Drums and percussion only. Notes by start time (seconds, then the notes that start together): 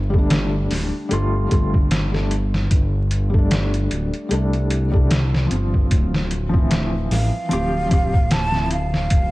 0.14 kick
0.30 snare, closed hi-hat
0.71 snare, open hi-hat
1.11 closed hi-hat
1.51 kick, closed hi-hat
1.74 kick
1.91 snare, closed hi-hat
2.14 snare
2.31 closed hi-hat
2.54 snare
2.71 kick, closed hi-hat
3.11 closed hi-hat
3.34 kick
3.51 snare, closed hi-hat
3.74 closed hi-hat
3.91 closed hi-hat
4.14 closed hi-hat
4.31 closed hi-hat
4.53 closed hi-hat
4.70 closed hi-hat
4.94 kick
5.11 snare, closed hi-hat
5.34 snare
5.51 closed hi-hat
5.74 kick
5.91 kick, closed hi-hat
6.14 snare
6.31 closed hi-hat
6.54 kick
6.71 snare, closed hi-hat
7.11 snare, open hi-hat
7.51 closed hi-hat
7.91 kick, closed hi-hat
8.14 kick
8.31 snare, closed hi-hat
8.54 snare
8.71 closed hi-hat
8.94 snare
9.10 kick, closed hi-hat